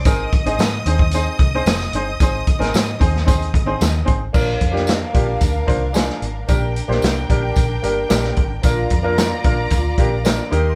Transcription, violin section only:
X:1
M:4/4
L:1/8
Q:1/4=112
K:Bbmix
V:1 name="Violin section"
[ee']8- | [ee']6- [ee'] z | [DBf]8 | [DBg]8 |
[Fdb]6- [Fdb] [Gec'] |]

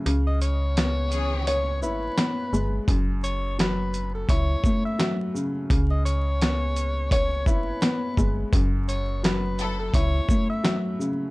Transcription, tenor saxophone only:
X:1
M:4/4
L:1/16
Q:"Swing 16ths" 1/4=85
K:F#dor
V:1 name="Tenor saxophone"
z d c6 c2 B6 | z2 c2 B3 A c3 e2 z3 | z d c6 c2 B6 | z2 c2 B3 A c3 e2 z3 |]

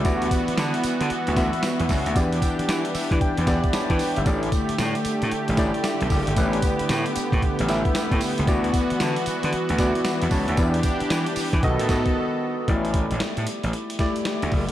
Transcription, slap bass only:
X:1
M:4/4
L:1/16
Q:"Swing 16ths" 1/4=114
K:Ador
V:1 name="Slap bass" clef=bass
D,,2 z2 D, z2 D, z D,,2 z2 E,, ^C,, D,, | E,,2 z2 E, z2 E, z E,,2 z2 E, z G,,, | A,,,2 z2 A,, z2 A,, z A,,,2 z2 B,,, F,,, G,,, | A,,,2 z2 A,, z2 A,, z A,,,2 z2 A,, z ^C,, |
D,,2 z2 D, z2 D, z D,,2 z2 E,, ^C,, D,, | E,,2 z2 E, z2 E, B,,, A,,2 z4 z | A,,,3 A,,, z A,, z A,,, z4 z D,, F,,, z |]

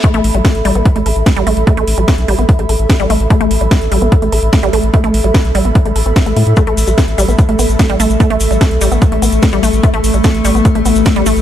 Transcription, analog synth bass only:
X:1
M:4/4
L:1/16
Q:1/4=147
K:C
V:1 name="Analog synth bass" clef=bass
z A,,, A,,, A,,, z A,,, A,,, A,,, z A,,, A,,, A,,, z A,,, A,,, A,,, | z A,,, A,,, A,,, z B,,, A,,, A,,, z A,,, A,,, A,,, z A,,, A,,, A,,, | z A,,, A,,, A,,, z A,,, A,,, A,,, z A,,, A,,, A,,, z A,,, A,,, A,,, | z A,,, A,,, A,,, z B,,, A,,, A,,, z A,,, A,,, A,,, z A,,, A,, A,, |
z A,,, A,,, A,,, z A,,, A,,, A,,, z A,,, A,,, A,,, z A,,, A,,, A,,, | z A,,, A,,, A,,, z B,,, A,,, A,,, z A,,, A,,, A,,, z A,,, A,,, A,,, | z A,,, A,,, A,,, z A,,, A,,, A,,, z A,,, A,,, A,,, z A,,, A,,, A,,, |]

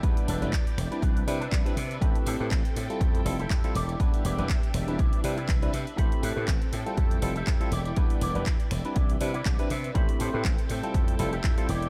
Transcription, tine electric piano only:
X:1
M:4/4
L:1/16
Q:"Swing 16ths" 1/4=121
K:Am
V:1 name="Tine electric piano"
[G,B,DEB]3 [G,B,DEB] z3 [G,CDEB]3 [G,CDEB] z2 [G,CDEB] z2 | [A,CEGB]3 [A,CEGB] z3 [G,CEFA]3 [G,CEFA] z2 [G,CEFA] z2 | [G,B,DEB]3 [G,B,DEB] z3 [G,CDEB]3 [G,CDEB] z2 [G,CDEB] z2 | [A,CEGb]3 [A,CEGB] z3 [G,CEFA]3 [G,CEFA] z2 [G,CEFA] z2 |
[G,B,DEB]3 [G,B,DEB] z3 [G,CDEB]3 [G,CDEB] z2 [G,CDEB] z2 | [A,CEGb]3 [A,CEGB] z3 [G,CEFA]3 [G,CEFA] z2 [G,CEFA] z2 |]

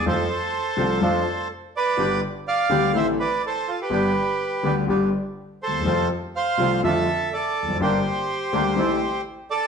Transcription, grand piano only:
X:1
M:4/4
L:1/16
Q:1/4=124
K:Gmix
V:1 name="Grand piano" clef=bass
[F,,F,A,CA]2 z4 [C,,C,F,A,CA]2 [F,,F,A,DA]2 z6 | [G,,,G,,D,G,B,G]2 z4 [D,,D,G,B,G]2 [A,,,A,,E,A,CA]2 z6 | [G,,,G,,D,G,B,G]2 z4 [D,,D,G,B,G]2 [G,,,G,,D,G,B,G]2 z4 z/2 D,,/2 _E,,/2 =E,,/2 | [F,,C,F,A,F]2 z4 [C,,C,F,A,F]2 [F,,D,F,A,F]2 z4 z/2 E,,/2 F,,/2 ^F,,/2 |
[G,,,G,,D,G,_B,G]2 z4 [D,,D,G,B,G]2 [A,,,A,,E,A,CA]2 z6 |]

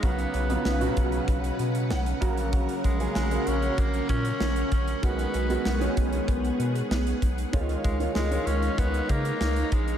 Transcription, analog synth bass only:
X:1
M:4/4
L:1/8
Q:1/4=96
K:Dbmix
V:1 name="Analog synth bass" clef=bass
C,, C,, C,, C,, C,, C, C,, B,,,- | B,,, B,,, B,,, B,,, B,,, B,, B,,, B,,, | C,, C,, C,, C,, C,, C, C,, C,, | D,, D,, D,, D,, D,, D, D,, B,,, |]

